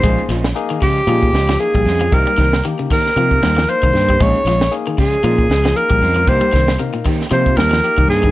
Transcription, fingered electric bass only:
X:1
M:4/4
L:1/16
Q:"Swing 16ths" 1/4=115
K:Bbdor
V:1 name="Fingered electric bass" clef=bass
B,,, z B,,,2 z4 B,,2 D,,2 z B,,, F,,2 | C,, z C,,2 z4 C,2 E,,2 z C,, G,,2 | B,,, z B,,,2 z4 B,,2 D,,2 z B,,, F,,2 | C,, z C,,2 z4 C,2 E,,2 z C,, G,,2 |]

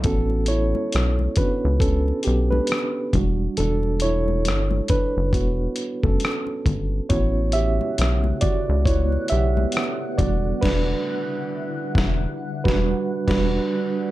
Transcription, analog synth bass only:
X:1
M:4/4
L:1/16
Q:"Swing 16ths" 1/4=68
K:Amix
V:1 name="Analog synth bass" clef=bass
A,,,4 B,,,2 z C,,3 B,,,2 z2 E,,,2 | E,,,4 G,,,2 z F,,, E,,,2 z F,,, z2 G,,,2 | A,,,4 B,,,2 z C,,3 B,,,2 z2 E,,,2 | E,,,2 z4 E,,,2 z E,,,2 z E,,,2 z2 |]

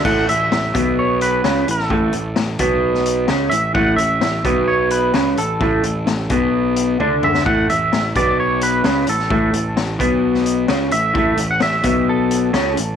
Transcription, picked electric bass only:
X:1
M:4/4
L:1/8
Q:1/4=130
K:A
V:1 name="Picked electric bass" clef=bass
A,,, A,,, A,,, B,,,3 C,, A,,, | A,,, A,,, A,,, B,,,3 C,, A,,, | A,,, A,,, A,,, B,,,3 C,, A,,, | A,,, A,,, A,,, B,,,3 D,,2 |
A,,, A,,, A,,, B,,,3 C,, A,,, | A,,, A,,, A,,, B,,,3 C,, A,,, | A,,, A,,, A,,, B,,,3 C,, A,,, |]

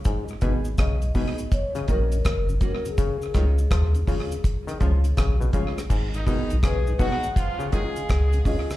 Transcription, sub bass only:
X:1
M:4/4
L:1/16
Q:"Swing 16ths" 1/4=82
K:G#dor
V:1 name="Sub bass" clef=bass
z2 G,,,2 B,,,2 z4 A,,,2 F,,,2 z2 | z2 C,,2 D,,2 z4 C,,2 A,,,2 z2 | G,,,3 B,,,3 z6 C,,2 z2 |]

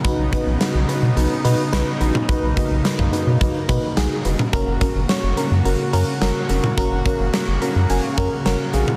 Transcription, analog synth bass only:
X:1
M:4/4
L:1/16
Q:1/4=107
K:F#
V:1 name="Analog synth bass" clef=bass
B,,, B,,, z B,,, z B,,, z B,, B,,, z B,, z B,,, z A,,, z | B,,, B,,, z B,,, z B,,, z B,, B,,, z B,, z B,,, z E,,, z | F,,, F,,, z F,,, z F,,, z F,, F,,, z F,, z F,,, z E,,, z | F,,, F,,, z F,,, z F,,, z F,, F,,, z F,, z F,,, z A,,, z |]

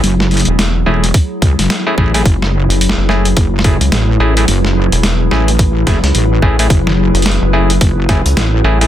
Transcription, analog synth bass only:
X:1
M:4/4
L:1/16
Q:"Swing 16ths" 1/4=108
K:F#m
V:1 name="Analog synth bass" clef=bass
z3 E,,,3 z8 z2 | z3 F,,,2 F,,,3 z3 C,, z2 A,,,2 | z3 E,,,3 z4 z C,, z2 A,,,2 | z3 F,,,2 F,,,3 z3 C,, z2 A,,,2 |]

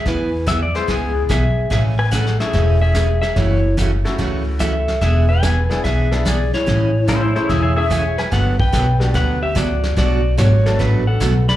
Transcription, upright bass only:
X:1
M:4/4
L:1/8
Q:"Swing" 1/4=145
K:A
V:1 name="Upright bass" clef=bass
E,,4 C,,2 B,,,2 | A,,,4 E,,,4 | F,,,4 C,,4 | E,,,4 B,,,4 |
A,,,4 E,,,4 | =G,,,2 B,,,2 D,,2 C,,2 | B,,,2 G,,,2 A,,,2 B,,,2 |]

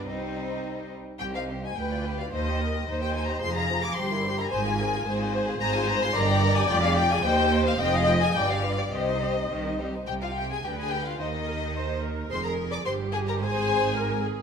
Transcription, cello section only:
X:1
M:2/4
L:1/8
Q:1/4=109
K:Cm
V:1 name="Cello section" clef=bass
E3 z | C,,2 D,,2 | E,,2 E,,2 | F,,2 G,,2 |
A,,2 A,,2 | A,,2 G,,2 | F,,2 E,,2 | F,,2 G,,2 |
C,2 E, G, | C,2 D,2 | E,4 | F,,2 G,,2 |
A,,4 |]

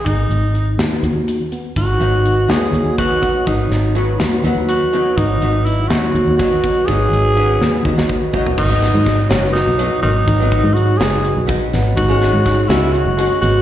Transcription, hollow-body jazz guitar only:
X:1
M:7/8
L:1/16
Q:1/4=123
K:G#m
V:1 name="Hollow-body jazz guitar"
z12 z2 | z2 [F,B,D]4 [F,B,D]4 [F,B,D]4 | [F,B,D]4 [F,B,F]4 [F,B,D]4 [F,B,D]2- | [F,B,D]2 [F,B,D]4 [F,B,D]4 [F,B,D]4 |
[F,B,D]4 [F,B,C]4 [F,B,D]4 [F,B,D]2 | z [F,B,D]4- [F,B,D] [F,B,D]4 [F,B,D]4- | [F,B,D] [F,B,D]4- [F,B,D] [F,B,D]4 [F,B,D]4 | z [G,CF]4- [G,CF] [G,CF]4 [G,CF]4 |]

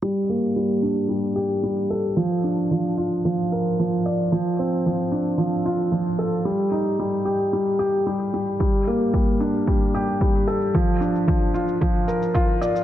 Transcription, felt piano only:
X:1
M:4/4
L:1/8
Q:1/4=112
K:Gm
V:1 name="Felt piano" clef=bass
G, B, G, D G, G G, A | F, D F, F F, B F, d | F, C F, D F, F F, A | G, E G, G G, G G, G, |
G, B, G, D G, G G, A | F, D F, F F, B F d |]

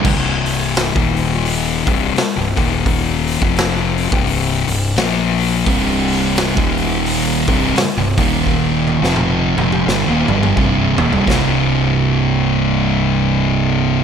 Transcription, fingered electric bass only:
X:1
M:4/4
L:1/16
Q:"Swing" 1/4=86
K:Cm
V:1 name="Fingered electric bass" clef=bass
C,,,4- C,,, E,,,4- E,,, C,,,2 z C,,, E,,,2- | E,,,3 F,,,4 C,,,3 C,,,2 B,,,4 | C,,,4- C,,, E,,,4- E,,, C,,,2 z C,,, E,,,2- | E,,,3 F,,,3 F,,,2 G,,, E,,, G,,,2 C,,,2 E,,, C,,, |
C,,,16 |]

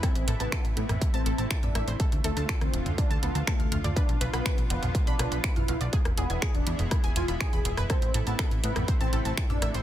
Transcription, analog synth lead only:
X:1
M:4/4
L:1/16
Q:1/4=122
K:Am
V:1 name="Analog synth lead"
C2 z B,2 z B,2 z C2 z2 D2 z | z2 A,2 z C2 z D z B, z A,2 z2 | D2 z B,2 z B,2 z D2 z2 E2 z | z2 B,2 z D2 z E z F z ^G2 z2 |
C2 z B,2 z B,2 z C2 z2 D2 z |]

